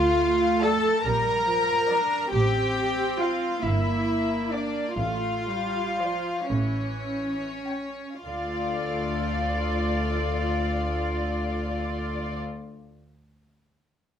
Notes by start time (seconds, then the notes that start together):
Already playing: D2 A3 F4 F5
0.62 A4 D5 A5
1.04 A#1 G3 A#4 A#5
1.47 F3
1.89 D4 D5
2.32 A1 C4 G4 G5
3.20 F4 F5
3.63 G1 A#3 E4 E5
4.51 D4 D5
4.98 A1 A3 F4 F5
5.48 G3
5.98 F3 D5
6.51 A1 E3 C#4 C#5
7.69 G5
8.25 D2 A3 F4 A4 D5 F5